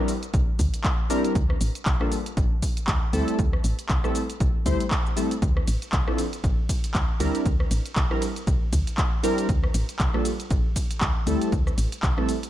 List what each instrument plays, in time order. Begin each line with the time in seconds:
Already playing: synth keys G3 C4 D4 E4 A#4
0.08 open hi-hat, cabasa
0.23 closed hi-hat, cabasa
0.34 fm bass C2, kick, closed hi-hat, cabasa
0.59 fm bass D2, kick, open hi-hat, cabasa
0.74 closed hi-hat, cabasa
0.84 kick, clap, closed hi-hat, cabasa
1.10 synth keys G3 C4 D4 E4 A#4, open hi-hat, cabasa
1.25 closed hi-hat, cabasa
1.35 fm bass D2, kick, closed hi-hat, cabasa
1.50 cross-stick
1.61 fm bass A1, open hi-hat, cabasa
1.75 closed hi-hat, cabasa
1.86 fm bass C2, kick, clap, closed hi-hat, cabasa
2.01 synth keys G3 A#3 D4 F4 A4, cross-stick
2.12 open hi-hat, cabasa
2.26 closed hi-hat, cabasa
2.37 fm bass A1, kick, closed hi-hat, cabasa
2.62 kick, open hi-hat, cabasa
2.77 closed hi-hat, cabasa
2.88 fm bass D2, kick, clap, closed hi-hat, cabasa
3.13 fm bass D2, synth keys G3 A3 C4 E4 A4, open hi-hat, cabasa
3.28 closed hi-hat, cabasa
3.39 fm bass D2, kick, closed hi-hat, cabasa
3.53 cross-stick
3.64 fm bass A1, open hi-hat, cabasa
3.79 closed hi-hat, cabasa
3.89 fm bass C2, kick, clap, closed hi-hat, cabasa
4.04 synth keys G3 A3 C4 E4 A4, cross-stick, cabasa
4.15 open hi-hat, cabasa
4.30 closed hi-hat, cabasa
4.40 fm bass C2, kick, closed hi-hat, cabasa
4.66 fm bass D2, synth keys G3 A3 C4 E4 C5, kick, open hi-hat, cabasa
4.80 closed hi-hat, cabasa
4.91 kick, clap, closed hi-hat, cabasa
5.06 cabasa
5.16 synth keys G3 A3 C4 E4 A4, open hi-hat, cabasa
5.31 closed hi-hat, cabasa
5.42 fm bass D2, kick, closed hi-hat, cabasa
5.57 cross-stick
5.67 fm bass A1, open hi-hat, ride, cabasa
5.82 closed hi-hat, cabasa
5.93 fm bass C2, kick, clap, closed hi-hat, cabasa
6.07 synth keys F3 C4 D4 E4 A4, cross-stick
6.18 open hi-hat, ride, cabasa
6.33 closed hi-hat, cabasa
6.44 fm bass A1, kick, closed hi-hat, cabasa
6.69 kick, open hi-hat, ride, cabasa
6.84 closed hi-hat, cabasa
6.94 fm bass D2, kick, clap, closed hi-hat, cabasa
7.20 fm bass D2, synth keys G3 C4 D4 E4 A#4, open hi-hat, ride, cabasa
7.35 closed hi-hat, cabasa
7.46 fm bass D2, kick, closed hi-hat, cabasa
7.60 cross-stick
7.71 fm bass A1, open hi-hat, ride, cabasa
7.86 closed hi-hat, cabasa
7.96 fm bass C2, kick, clap, closed hi-hat, cabasa
8.11 synth keys G3 C4 D4 E4 A#4, cross-stick
8.22 open hi-hat, ride, cabasa
8.36 closed hi-hat, cabasa
8.47 fm bass C2, kick, closed hi-hat, cabasa
8.73 fm bass D2, kick, open hi-hat, ride, cabasa
8.87 closed hi-hat, cabasa
8.98 kick, clap, closed hi-hat, cabasa
9.23 synth keys G3 C4 D4 E4 A#4, open hi-hat, ride, cabasa
9.38 closed hi-hat, cabasa
9.49 fm bass D2, kick, closed hi-hat, cabasa
9.64 cross-stick
9.74 fm bass A1, open hi-hat, ride, cabasa
9.89 closed hi-hat, cabasa
9.99 fm bass C2, kick, clap, closed hi-hat, cabasa
10.14 synth keys G3 A#3 D4 F4 A4, cross-stick
10.25 open hi-hat, ride, cabasa
10.40 closed hi-hat, cabasa
10.50 fm bass A1, kick, closed hi-hat, cabasa
10.76 kick, open hi-hat, ride, cabasa
10.91 closed hi-hat, cabasa
11.01 fm bass D2, kick, clap, closed hi-hat, cabasa
11.27 fm bass D2, synth keys G3 A3 C4 E4 A4, open hi-hat, ride, cabasa
11.41 closed hi-hat, cabasa
11.52 fm bass D2, kick, closed hi-hat, cabasa
11.67 cross-stick, cabasa
11.78 fm bass A1, open hi-hat, ride, cabasa
11.92 closed hi-hat, cabasa
12.03 fm bass C2, kick, clap, closed hi-hat, cabasa
12.17 synth keys G3 A3 C4 E4 A4, cross-stick
12.29 open hi-hat, ride, cabasa
12.43 closed hi-hat, cabasa